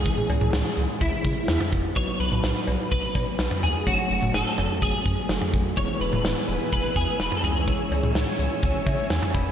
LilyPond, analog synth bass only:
\new Staff \with { instrumentName = "Analog synth bass" } { \clef bass \time 4/4 \key cis \minor \tempo 4 = 126 r8 cis,16 cis,16 cis,16 r16 cis,16 r16 cis,16 r16 cis16 r16 e,16 r16 e,,16 r16 | b,,16 r16 b,,16 b,,16 b,,16 r16 b,,16 r16 b,,16 r16 b,16 r16 b,,16 r16 dis,16 r16 | fis,,16 r16 fis,,16 fis,,16 fis,,16 r16 fis,,16 r16 fis,,16 r16 fis,16 r16 fis,,16 r16 a,,16 r16 | e,,16 r16 e,,16 e,,16 e,,16 r16 e,,16 r16 e,,16 r16 e,16 r16 e,,16 r16 cis,8~ |
cis,16 r16 cis,16 cis,16 cis,16 r16 cis,16 r16 cis,16 r16 cis16 r16 e,16 r16 e,,16 r16 | }